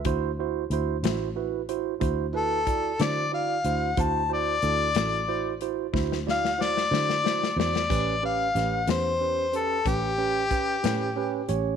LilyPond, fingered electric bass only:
\new Staff \with { instrumentName = "Fingered electric bass" } { \clef bass \time 12/8 \key d \mixolydian \tempo 4. = 61 d,4 d,8 a,,4. d,4. d4 d,8 | d,4 d,8 a,,4. d,4. d4 e,8 | a,,4 a,,8 e,4. a,,4. a,4 a,,8 | }